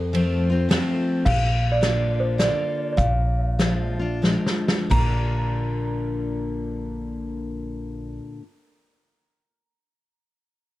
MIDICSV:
0, 0, Header, 1, 5, 480
1, 0, Start_track
1, 0, Key_signature, -2, "major"
1, 0, Tempo, 563380
1, 1069, Time_signature, 3, 2, 24, 8
1, 2037, Tempo, 600601
1, 2997, Tempo, 641711
1, 3477, Tempo, 698487
1, 7989, End_track
2, 0, Start_track
2, 0, Title_t, "Celesta"
2, 0, Program_c, 0, 8
2, 0, Note_on_c, 0, 69, 62
2, 0, Note_on_c, 0, 72, 80
2, 562, Note_off_c, 0, 72, 0
2, 564, Note_off_c, 0, 69, 0
2, 1068, Note_on_c, 0, 77, 101
2, 1464, Note_on_c, 0, 74, 97
2, 1475, Note_off_c, 0, 77, 0
2, 1873, Note_on_c, 0, 72, 78
2, 1875, Note_off_c, 0, 74, 0
2, 2038, Note_on_c, 0, 74, 87
2, 2046, Note_off_c, 0, 72, 0
2, 2436, Note_off_c, 0, 74, 0
2, 2464, Note_on_c, 0, 74, 63
2, 2504, Note_on_c, 0, 77, 88
2, 2507, Note_off_c, 0, 74, 0
2, 3445, Note_off_c, 0, 77, 0
2, 3940, Note_on_c, 0, 82, 71
2, 6191, Note_off_c, 0, 82, 0
2, 7989, End_track
3, 0, Start_track
3, 0, Title_t, "Steel-string acoustic guitar"
3, 0, Program_c, 1, 25
3, 0, Note_on_c, 1, 41, 89
3, 110, Note_on_c, 1, 53, 61
3, 116, Note_on_c, 1, 57, 53
3, 122, Note_on_c, 1, 60, 60
3, 124, Note_on_c, 1, 65, 60
3, 410, Note_off_c, 1, 53, 0
3, 413, Note_off_c, 1, 57, 0
3, 413, Note_off_c, 1, 65, 0
3, 415, Note_off_c, 1, 60, 0
3, 424, Note_on_c, 1, 65, 59
3, 441, Note_on_c, 1, 60, 49
3, 557, Note_off_c, 1, 41, 0
3, 585, Note_off_c, 1, 65, 0
3, 585, Note_on_c, 1, 53, 60
3, 588, Note_off_c, 1, 60, 0
3, 591, Note_on_c, 1, 57, 56
3, 598, Note_on_c, 1, 60, 63
3, 603, Note_on_c, 1, 65, 56
3, 1049, Note_off_c, 1, 53, 0
3, 1052, Note_off_c, 1, 57, 0
3, 1055, Note_off_c, 1, 60, 0
3, 1058, Note_off_c, 1, 65, 0
3, 1070, Note_on_c, 1, 46, 83
3, 1543, Note_on_c, 1, 50, 51
3, 1550, Note_on_c, 1, 58, 56
3, 1554, Note_on_c, 1, 62, 63
3, 1558, Note_on_c, 1, 65, 59
3, 2002, Note_off_c, 1, 46, 0
3, 2016, Note_off_c, 1, 50, 0
3, 2020, Note_off_c, 1, 58, 0
3, 2022, Note_off_c, 1, 62, 0
3, 2024, Note_off_c, 1, 65, 0
3, 2030, Note_on_c, 1, 50, 49
3, 2037, Note_on_c, 1, 58, 61
3, 2040, Note_on_c, 1, 62, 56
3, 2044, Note_on_c, 1, 65, 61
3, 2488, Note_off_c, 1, 50, 0
3, 2491, Note_off_c, 1, 58, 0
3, 2492, Note_off_c, 1, 62, 0
3, 2494, Note_off_c, 1, 65, 0
3, 2502, Note_on_c, 1, 46, 85
3, 2994, Note_on_c, 1, 53, 54
3, 2999, Note_on_c, 1, 56, 57
3, 3003, Note_on_c, 1, 62, 62
3, 3010, Note_on_c, 1, 65, 64
3, 3289, Note_off_c, 1, 65, 0
3, 3291, Note_off_c, 1, 53, 0
3, 3293, Note_off_c, 1, 56, 0
3, 3295, Note_off_c, 1, 62, 0
3, 3298, Note_on_c, 1, 65, 53
3, 3314, Note_on_c, 1, 62, 46
3, 3439, Note_off_c, 1, 46, 0
3, 3466, Note_off_c, 1, 62, 0
3, 3466, Note_off_c, 1, 65, 0
3, 3466, Note_on_c, 1, 53, 54
3, 3473, Note_on_c, 1, 56, 57
3, 3475, Note_on_c, 1, 62, 56
3, 3479, Note_on_c, 1, 65, 57
3, 3922, Note_off_c, 1, 53, 0
3, 3924, Note_off_c, 1, 56, 0
3, 3925, Note_off_c, 1, 62, 0
3, 3927, Note_off_c, 1, 65, 0
3, 3932, Note_on_c, 1, 46, 72
3, 3936, Note_on_c, 1, 50, 73
3, 3945, Note_on_c, 1, 58, 83
3, 3951, Note_on_c, 1, 62, 74
3, 3955, Note_on_c, 1, 65, 82
3, 6337, Note_off_c, 1, 46, 0
3, 6342, Note_off_c, 1, 50, 0
3, 6350, Note_off_c, 1, 58, 0
3, 6356, Note_off_c, 1, 62, 0
3, 6360, Note_off_c, 1, 65, 0
3, 7989, End_track
4, 0, Start_track
4, 0, Title_t, "Upright bass"
4, 0, Program_c, 2, 32
4, 0, Note_on_c, 2, 41, 83
4, 649, Note_off_c, 2, 41, 0
4, 1075, Note_on_c, 2, 34, 85
4, 2103, Note_off_c, 2, 34, 0
4, 2511, Note_on_c, 2, 34, 88
4, 3552, Note_off_c, 2, 34, 0
4, 3938, Note_on_c, 2, 34, 81
4, 6188, Note_off_c, 2, 34, 0
4, 7989, End_track
5, 0, Start_track
5, 0, Title_t, "Drums"
5, 124, Note_on_c, 9, 51, 57
5, 209, Note_off_c, 9, 51, 0
5, 604, Note_on_c, 9, 38, 81
5, 604, Note_on_c, 9, 51, 63
5, 689, Note_off_c, 9, 38, 0
5, 689, Note_off_c, 9, 51, 0
5, 1075, Note_on_c, 9, 36, 98
5, 1077, Note_on_c, 9, 49, 84
5, 1160, Note_off_c, 9, 36, 0
5, 1162, Note_off_c, 9, 49, 0
5, 1556, Note_on_c, 9, 38, 82
5, 1556, Note_on_c, 9, 42, 62
5, 1641, Note_off_c, 9, 38, 0
5, 1641, Note_off_c, 9, 42, 0
5, 2041, Note_on_c, 9, 38, 83
5, 2041, Note_on_c, 9, 42, 64
5, 2121, Note_off_c, 9, 38, 0
5, 2121, Note_off_c, 9, 42, 0
5, 2511, Note_on_c, 9, 36, 98
5, 2513, Note_on_c, 9, 42, 58
5, 2590, Note_off_c, 9, 36, 0
5, 2593, Note_off_c, 9, 42, 0
5, 2999, Note_on_c, 9, 38, 75
5, 2999, Note_on_c, 9, 42, 57
5, 3074, Note_off_c, 9, 38, 0
5, 3074, Note_off_c, 9, 42, 0
5, 3480, Note_on_c, 9, 38, 57
5, 3549, Note_off_c, 9, 38, 0
5, 3636, Note_on_c, 9, 38, 60
5, 3705, Note_off_c, 9, 38, 0
5, 3786, Note_on_c, 9, 38, 90
5, 3855, Note_off_c, 9, 38, 0
5, 3942, Note_on_c, 9, 36, 88
5, 3943, Note_on_c, 9, 49, 74
5, 4011, Note_off_c, 9, 36, 0
5, 4012, Note_off_c, 9, 49, 0
5, 7989, End_track
0, 0, End_of_file